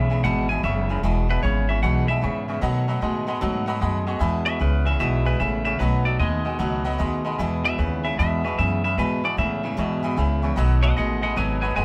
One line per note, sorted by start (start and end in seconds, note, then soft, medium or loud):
0.00 0.23 B1 loud
0.00 0.23 E5 medium
0.10 0.23 E2 medium
0.10 0.23 C#3 loud
0.10 0.23 E3 soft
0.10 0.24 G#3 soft
0.10 0.24 B3 medium
0.10 0.24 E4 medium
0.10 0.18 E5 medium
0.10 0.19 G#5 medium
0.10 0.19 B5 medium
0.24 0.63 G#1 loud
0.24 0.50 E2 medium
0.24 0.47 E2 loud
0.24 0.50 B2 medium
0.24 0.48 B2 loud
0.24 0.50 E3 medium
0.24 0.49 G#3 loud
0.24 0.49 B3 medium
0.24 0.48 E4 loud
0.24 0.40 E5 medium
0.24 0.49 F#5 medium
0.24 0.40 G#5 medium
0.24 0.40 B5 medium
0.49 0.62 E2 medium
0.49 0.62 E3 medium
0.49 0.63 G#3 medium
0.49 0.64 B3 medium
0.49 0.63 E4 medium
0.49 0.58 E5 medium
0.49 0.63 G#5 medium
0.49 0.59 G#5 medium
0.49 0.59 B5 loud
0.63 1.02 F#1 loud
0.63 0.87 E2 medium
0.63 0.87 C#3 medium
0.63 0.89 E3 medium
0.63 0.90 G#3 medium
0.63 0.89 B3 medium
0.63 0.88 E4 medium
0.63 0.79 E5 medium
0.63 0.89 E5 loud
0.63 0.80 G#5 medium
0.63 0.80 C#6 loud
0.89 1.02 E2 medium
0.89 1.03 C#3 loud
0.89 1.02 E3 soft
0.89 1.03 G#3 medium
0.89 1.03 B3 medium
0.89 1.03 E4 medium
0.89 0.98 E5 medium
0.89 0.98 G#5 medium
0.89 0.98 B5 medium
1.03 1.42 E1 medium
1.03 1.29 E2 medium
1.03 1.27 E2 medium
1.03 1.29 B2 medium
1.03 1.27 B2 medium
1.03 1.29 E3 loud
1.03 1.29 G#3 loud
1.03 1.28 B3 loud
1.03 1.27 E4 loud
1.03 1.19 E5 loud
1.03 1.19 G#5 loud
1.03 1.19 B5 loud
1.28 1.42 E2 medium
1.28 1.42 B2 medium
1.28 1.41 E3 soft
1.28 1.42 G#3 soft
1.28 1.43 B3 soft
1.28 1.43 E4 medium
1.28 1.42 B4 loud
1.28 1.38 E5 medium
1.28 1.38 G#5 medium
1.28 1.38 B5 medium
1.42 1.82 G#1 medium
1.42 1.66 E2 medium
1.42 1.67 C#3 loud
1.42 1.68 E3 medium
1.42 1.69 G#3 medium
1.42 1.69 B3 medium
1.42 1.68 E4 medium
1.42 1.68 C#5 medium
1.42 1.58 E5 medium
1.42 1.59 G#5 medium
1.42 1.59 C#6 medium
1.69 1.82 E2 medium
1.69 1.82 C#3 medium
1.69 1.82 E3 soft
1.69 1.83 G#3 soft
1.69 1.83 B3 medium
1.69 1.83 E4 medium
1.69 1.77 E5 medium
1.69 1.82 E5 medium
1.69 1.77 G#5 medium
1.69 1.78 C#6 medium
1.82 2.21 B1 medium
1.82 2.09 E2 medium
1.82 2.06 E2 loud
1.82 2.06 B2 loud
1.82 2.09 B2 medium
1.82 2.09 E3 medium
1.82 2.09 G#3 medium
1.82 2.08 B3 medium
1.82 2.07 E4 medium
1.82 1.98 E5 medium
1.82 2.08 F#5 medium
1.82 1.98 G#5 medium
1.82 1.99 C#6 medium
2.08 2.21 E2 medium
2.08 2.21 B2 medium
2.08 2.21 G#3 soft
2.08 2.22 B3 medium
2.08 2.22 E4 medium
2.08 2.60 E5 loud
2.08 2.17 E5 medium
2.08 2.18 G#5 medium
2.08 2.18 B5 loud
2.21 2.46 E2 medium
2.21 2.62 G#2 loud
2.21 2.46 C#3 medium
2.21 2.48 E3 medium
2.21 2.48 G#3 medium
2.21 2.48 B3 medium
2.21 2.47 E4 medium
2.21 2.38 E5 medium
2.21 2.38 G#5 medium
2.21 2.39 C#6 loud
2.48 2.61 E2 medium
2.48 2.61 C#3 medium
2.48 2.62 E3 soft
2.48 2.62 G#3 medium
2.48 2.62 B3 medium
2.48 2.62 E4 medium
2.48 2.57 E5 medium
2.48 2.57 G#5 medium
2.48 2.58 C#6 medium
2.61 2.88 B2 medium
2.61 2.85 B2 medium
2.61 3.01 B2 medium
2.61 2.88 D#3 medium
2.61 2.85 F#3 medium
2.61 2.88 A3 loud
2.61 2.88 B3 medium
2.61 2.87 F#4 medium
2.61 2.77 D#5 loud
2.61 2.78 F#5 loud
2.61 2.78 B5 loud
2.88 3.01 B2 medium
2.88 3.01 F#3 medium
2.88 3.01 A3 medium
2.88 3.02 B3 medium
2.88 3.02 F#4 medium
2.88 2.96 D#5 medium
2.88 2.97 F#5 medium
2.88 2.97 B5 loud
3.01 3.41 A2 medium
3.01 3.25 B2 medium
3.01 3.28 D#3 medium
3.01 3.26 G#3 loud
3.01 3.28 A3 medium
3.01 3.26 B3 medium
3.01 3.25 F#4 medium
3.01 3.17 D#5 medium
3.01 3.18 F#5 medium
3.01 3.18 A5 medium
3.27 3.40 B2 medium
3.27 3.41 G#3 medium
3.27 3.40 A3 soft
3.27 3.41 B3 soft
3.27 3.41 F#4 medium
3.27 3.36 D#5 medium
3.27 3.36 F#5 medium
3.27 3.36 B5 loud
3.41 3.81 G#2 loud
3.41 3.67 B2 medium
3.41 3.65 B2 medium
3.41 3.67 D#3 loud
3.41 3.65 F#3 loud
3.41 3.67 A3 loud
3.41 3.66 B3 loud
3.41 3.65 F#4 loud
3.41 3.57 D#5 medium
3.41 3.57 F#5 medium
3.41 3.57 A5 loud
3.66 3.80 B2 medium
3.66 3.80 F#3 medium
3.66 3.80 A3 medium
3.66 3.80 B3 medium
3.66 3.81 F#4 medium
3.66 3.76 D#5 loud
3.66 3.76 F#5 loud
3.66 3.77 B5 loud
3.80 4.20 F#2 medium
3.80 4.05 B2 medium
3.80 4.06 D#3 medium
3.80 4.05 G#3 medium
3.80 4.07 A3 medium
3.80 4.07 B3 medium
3.80 4.05 F#4 medium
3.80 3.97 D#5 loud
3.80 3.97 F#5 loud
3.80 3.97 B5 loud
4.07 4.20 B2 medium
4.07 4.20 G#3 medium
4.07 4.21 A3 medium
4.07 4.20 B3 medium
4.07 4.21 F#4 medium
4.07 4.15 D#5 medium
4.07 4.16 F#5 medium
4.07 4.16 C#6 loud
4.19 4.47 E2 medium
4.19 4.59 E2 medium
4.19 4.44 E2 medium
4.19 4.47 B2 medium
4.19 4.44 B2 medium
4.19 4.47 E3 medium
4.19 4.47 G#3 medium
4.19 4.46 B3 loud
4.19 4.45 E4 loud
4.19 4.36 E5 loud
4.19 4.36 G#5 loud
4.19 4.36 B5 loud
4.45 4.59 E2 medium
4.45 4.59 B2 medium
4.45 4.58 E3 soft
4.45 4.59 G#3 medium
4.45 4.60 B3 medium
4.45 4.61 E4 medium
4.45 4.54 E5 medium
4.45 4.60 E5 loud
4.45 4.55 G#5 medium
4.45 4.55 C#6 medium
4.59 4.99 C#2 medium
4.59 4.84 E2 medium
4.59 4.84 C#3 loud
4.59 4.86 E3 medium
4.59 4.87 G#3 medium
4.59 4.86 B3 medium
4.59 4.85 E4 medium
4.59 4.86 B4 medium
4.59 4.75 E5 medium
4.59 4.76 G#5 medium
4.59 4.76 B5 medium
4.85 4.99 E2 medium
4.85 4.99 C#3 medium
4.85 4.99 E3 soft
4.85 4.99 G#3 soft
4.85 5.00 B3 soft
4.85 5.00 E4 medium
4.85 4.94 E5 medium
4.85 4.99 E5 medium
4.85 4.94 G#5 medium
4.85 4.95 B5 medium
4.98 5.39 B1 medium
4.98 5.26 E2 medium
4.98 5.23 E2 loud
4.98 5.26 B2 medium
4.98 5.24 B2 loud
4.98 5.26 E3 medium
4.98 5.26 G#3 medium
4.98 5.25 B3 medium
4.98 5.24 E4 loud
4.98 5.15 E5 medium
4.98 5.25 E5 medium
4.98 5.16 G#5 medium
4.98 5.16 C#6 medium
5.24 5.39 E2 medium
5.24 5.39 B2 loud
5.24 5.38 E3 medium
5.24 5.39 G#3 medium
5.24 5.40 B3 medium
5.24 5.40 E4 medium
5.24 5.40 B4 loud
5.24 5.34 E5 medium
5.24 5.34 G#5 medium
5.24 5.35 B5 loud
5.39 5.79 A1 loud
5.39 5.63 E2 medium
5.39 5.63 C#3 medium
5.39 5.66 E3 medium
5.39 5.66 G#3 medium
5.39 5.65 B3 medium
5.39 5.65 E4 medium
5.39 5.55 E5 medium
5.39 5.64 E5 loud
5.39 5.56 G#5 medium
5.39 5.56 B5 loud
5.65 5.78 E2 medium
5.65 5.79 C#3 medium
5.65 5.80 E3 soft
5.65 5.80 G#3 medium
5.65 5.80 B3 medium
5.65 5.80 E4 medium
5.65 5.74 E5 medium
5.65 5.79 E5 loud
5.65 5.74 G#5 medium
5.65 5.75 C#6 medium
5.79 6.19 B1 medium
5.79 6.03 B2 medium
5.79 6.06 B2 medium
5.79 6.06 D#3 medium
5.79 6.03 F#3 loud
5.79 6.06 A3 medium
5.79 6.06 B3 medium
5.79 6.05 F#4 loud
5.79 6.05 B4 medium
5.79 5.95 D#5 loud
5.79 5.96 F#5 loud
5.79 5.96 B5 loud
6.05 6.19 B2 medium
6.05 6.19 F#3 loud
6.05 6.19 A3 soft
6.05 6.20 B3 medium
6.05 6.20 F#4 medium
6.05 6.19 D5 medium
6.05 6.14 D#5 medium
6.05 6.14 F#5 medium
6.05 6.15 A5 medium
6.19 6.58 D#2 medium
6.19 6.43 B2 medium
6.19 6.45 D#3 medium
6.19 6.43 G#3 medium
6.19 6.46 A3 medium
6.19 6.45 B3 medium
6.19 6.43 F#4 medium
6.19 6.35 D#5 medium
6.19 7.35 D#5 loud
6.19 6.35 F#5 medium
6.19 6.36 B5 medium
6.45 6.58 B2 medium
6.45 6.58 G#3 medium
6.45 6.59 A3 soft
6.45 6.59 B3 soft
6.45 6.59 F#4 medium
6.45 6.54 D#5 medium
6.45 6.54 F#5 medium
6.45 6.54 G#5 medium
6.58 6.98 C#2 medium
6.58 6.85 B2 medium
6.58 6.83 B2 medium
6.58 6.85 D#3 medium
6.58 6.83 F#3 medium
6.58 6.85 A3 medium
6.58 6.85 B3 medium
6.58 6.84 F#4 loud
6.58 6.74 D#5 medium
6.58 6.75 F#5 medium
6.58 6.75 B5 medium
6.84 6.98 B2 medium
6.84 6.98 F#3 medium
6.84 6.98 A3 soft
6.84 6.99 B3 medium
6.84 6.99 F#4 medium
6.84 6.93 D#5 loud
6.84 6.94 F#5 loud
6.84 6.94 B5 loud
6.98 7.38 D#2 medium
6.98 7.23 B2 medium
6.98 7.25 D#3 medium
6.98 7.23 G#3 medium
6.98 7.25 A3 medium
6.98 7.24 B3 medium
6.98 7.23 F#4 medium
6.98 7.14 D#5 loud
6.98 7.15 F#5 loud
6.98 7.15 B5 loud
7.24 7.38 B2 medium
7.24 7.38 G#3 medium
7.24 7.40 A3 medium
7.24 7.39 B3 medium
7.24 7.39 F#4 medium
7.24 7.33 D#5 medium
7.24 7.34 F#5 medium
7.24 7.34 B5 loud
7.38 7.62 E2 medium
7.38 7.78 E2 medium
7.38 7.65 E2 medium
7.38 7.62 B2 medium
7.38 7.65 B2 medium
7.38 7.65 E3 loud
7.38 7.65 G#3 medium
7.38 7.65 B3 loud
7.38 7.64 E4 medium
7.38 7.54 E5 loud
7.38 7.54 G#5 loud
7.38 7.55 B5 loud
7.63 7.77 E2 medium
7.63 7.77 B2 medium
7.63 7.77 E3 soft
7.63 7.78 G#3 medium
7.63 7.79 B3 medium
7.63 7.79 E4 medium
7.63 7.73 E5 medium
7.63 7.79 E5 loud
7.63 7.73 G#5 medium
7.63 7.73 B5 medium
7.77 8.17 D#2 loud
7.77 8.02 E2 medium
7.77 8.02 C#3 medium
7.77 8.05 E3 medium
7.77 8.05 G#3 medium
7.77 8.05 B3 medium
7.77 8.04 E4 medium
7.77 8.04 B4 medium
7.77 7.94 E5 medium
7.77 7.94 G#5 medium
7.77 7.94 B5 medium
8.03 8.17 E2 medium
8.03 8.17 C#3 medium
8.03 8.19 E3 soft
8.03 8.19 G#3 soft
8.03 8.19 B3 medium
8.03 8.19 E4 medium
8.03 8.12 E5 medium
8.03 8.18 E5 medium
8.03 8.12 G#5 medium
8.03 8.13 B5 medium
8.18 8.42 E2 medium
8.18 8.57 E2 loud
8.18 8.45 E2 medium
8.18 8.42 B2 medium
8.18 8.45 B2 medium
8.18 8.45 E3 medium
8.18 8.45 G#3 medium
8.18 8.45 B3 medium
8.18 8.44 E4 medium
8.18 8.34 E5 medium
8.18 8.44 E5 loud
8.18 8.34 G#5 medium
8.18 8.34 B5 medium
8.44 8.57 E2 medium
8.44 8.57 B2 medium
8.44 8.57 E3 soft
8.44 8.59 G#3 medium
8.44 8.59 B3 medium
8.44 8.59 E4 medium
8.44 8.58 B4 medium
8.44 8.52 E5 medium
8.44 8.53 G#5 medium
8.44 8.53 C#6 medium
8.58 8.82 E2 medium
8.58 8.97 F#2 medium
8.58 8.82 C#3 medium
8.58 8.84 E3 medium
8.58 8.85 G#3 medium
8.58 8.84 B3 medium
8.58 8.83 E4 medium
8.58 8.74 E5 medium
8.58 8.83 E5 loud
8.58 8.74 G#5 medium
8.58 8.75 B5 loud
8.84 8.96 E2 medium
8.84 8.97 C#3 medium
8.84 8.98 E3 soft
8.84 8.98 G#3 medium
8.84 8.98 B3 medium
8.84 8.98 E4 medium
8.84 8.98 E5 medium
8.84 8.93 E5 medium
8.84 8.93 G#5 medium
8.84 8.94 B5 medium
8.97 9.21 E2 medium
8.97 9.24 E2 medium
8.97 9.36 G#2 medium
8.97 9.21 B2 loud
8.97 9.24 B2 medium
8.97 9.24 E3 medium
8.97 9.24 G#3 medium
8.97 9.23 B3 medium
8.97 9.22 E4 loud
8.97 9.24 B4 loud
8.97 9.14 E5 loud
8.97 9.14 G#5 medium
8.97 9.15 B5 loud
9.23 9.37 E2 medium
9.23 9.37 B2 medium
9.23 9.36 E3 soft
9.23 9.37 G#3 medium
9.23 9.38 B3 soft
9.23 9.38 E4 medium
9.23 9.38 D5 loud
9.23 9.32 E5 medium
9.23 9.33 G#5 medium
9.23 9.33 C#6 medium
9.37 9.61 E2 medium
9.37 9.77 A2 loud
9.37 9.61 C#3 medium
9.37 9.63 E3 medium
9.37 9.64 G#3 medium
9.37 9.63 B3 medium
9.37 9.62 E4 medium
9.37 9.53 E5 medium
9.37 10.54 E5 loud
9.37 9.54 G#5 medium
9.37 9.54 B5 medium
9.63 9.77 E2 medium
9.63 9.77 C#3 medium
9.63 9.76 E3 soft
9.63 9.77 G#3 medium
9.63 9.77 B3 soft
9.63 9.77 E4 medium
9.63 9.72 E5 medium
9.63 9.73 G#5 medium
9.63 9.73 B5 medium
9.77 10.03 E2 medium
9.77 10.01 E2 loud
9.77 10.16 G#2 medium
9.77 10.03 B2 loud
9.77 10.02 B2 loud
9.77 10.03 E3 medium
9.77 10.03 G#3 medium
9.77 10.02 B3 medium
9.77 10.01 E4 loud
9.77 9.93 E5 medium
9.77 9.94 G#5 medium
9.77 9.94 C#6 medium
10.03 10.16 E2 medium
10.03 10.17 B2 medium
10.03 10.16 E3 medium
10.03 10.17 G#3 medium
10.03 10.17 B3 medium
10.03 10.17 E4 medium
10.03 10.12 E5 loud
10.03 10.12 G#5 loud
10.03 10.12 B5 loud
10.16 10.56 C#2 medium
10.16 10.41 E2 medium
10.16 10.42 C#3 loud
10.16 10.43 E3 medium
10.16 10.43 G#3 medium
10.16 10.42 B3 medium
10.16 10.41 E4 medium
10.16 10.32 E5 loud
10.16 10.33 G#5 loud
10.16 10.33 B5 loud
10.42 10.56 E2 medium
10.42 10.57 C#3 loud
10.42 10.57 E3 medium
10.42 10.58 G#3 medium
10.42 10.57 B3 medium
10.42 10.57 E4 medium
10.42 10.51 E5 medium
10.42 10.51 G#5 medium
10.42 10.52 C#6 loud
10.56 10.96 B1 loud
10.56 10.83 B2 medium
10.56 10.81 B2 medium
10.56 10.83 D#3 medium
10.56 10.81 F#3 medium
10.56 10.84 A3 loud
10.56 10.83 B3 medium
10.56 10.82 F#4 loud
10.56 10.72 D#5 loud
10.56 10.73 F#5 loud
10.56 10.73 B5 loud
10.82 10.96 B2 medium
10.82 10.96 F#3 medium
10.82 10.97 A3 medium
10.82 10.98 B3 medium
10.82 10.97 F#4 medium
10.82 10.91 D#5 medium
10.82 10.95 D#5 medium
10.82 10.92 F#5 medium
10.82 10.97 F#5 loud
10.82 10.92 B5 medium
10.95 11.36 A1 medium
10.95 11.21 B2 medium
10.95 11.23 D#3 medium
10.95 11.21 G#3 loud
10.95 11.23 A3 medium
10.95 11.23 B3 medium
10.95 11.22 F#4 medium
10.95 11.12 D#5 medium
10.95 11.21 D#5 medium
10.95 11.12 F#5 medium
10.95 11.22 F#5 medium
10.95 11.12 B5 medium
11.21 11.36 B2 medium
11.21 11.36 G#3 loud
11.21 11.36 A3 soft
11.21 11.36 B3 soft
11.21 11.37 F#4 medium
11.21 11.31 D#5 medium
11.21 11.36 D#5 medium
11.21 11.31 F#5 medium
11.21 11.37 F#5 loud
11.21 11.31 B5 medium
11.35 11.76 G#1 loud
11.35 11.63 B2 medium
11.35 11.60 B2 medium
11.35 11.63 D#3 medium
11.35 11.61 F#3 loud
11.35 11.63 A3 loud
11.35 11.62 B3 medium
11.35 11.61 F#4 medium
11.35 11.60 B4 medium
11.35 11.52 D#5 medium
11.35 11.52 F#5 medium
11.35 11.60 G#5 loud
11.35 11.53 B5 medium
11.61 11.75 B2 medium
11.61 11.75 F#3 medium
11.61 11.76 A3 soft
11.61 11.77 B3 medium
11.61 11.77 F#4 medium
11.61 11.74 B4 medium
11.61 11.71 D#5 medium
11.61 11.71 F#5 medium
11.61 11.75 G#5 medium
11.61 11.71 B5 loud
11.75 11.85 F#1 loud
11.75 11.85 B2 medium
11.75 11.85 D#3 medium
11.75 11.85 G#3 loud
11.75 11.85 A3 medium
11.75 11.85 B3 medium
11.75 11.85 F#4 medium
11.75 11.85 B4 medium
11.75 11.85 D#5 loud
11.75 11.85 F#5 medium
11.75 11.85 G#5 loud